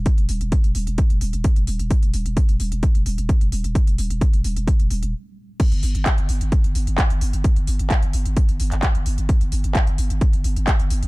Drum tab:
CC |----------------|----------------|----------------|x---------------|
HH |xxoxxxoxxxoxxxox|xxoxxxoxxxoxxxox|xxoxxxoxxxox----|xxoxxxoxxxoxxxox|
CP |----------------|----------------|----------------|----x-------x---|
BD |o---o---o---o---|o---o---o---o---|o---o---o-------|o---o---o---o---|

CC |----------------|----------------|
HH |xxoxxxoxxxoxxxox|xxoxxxoxxxoxxxox|
CP |----x------xx---|----x-------x---|
BD |o---o---o---o---|o---o---o---o---|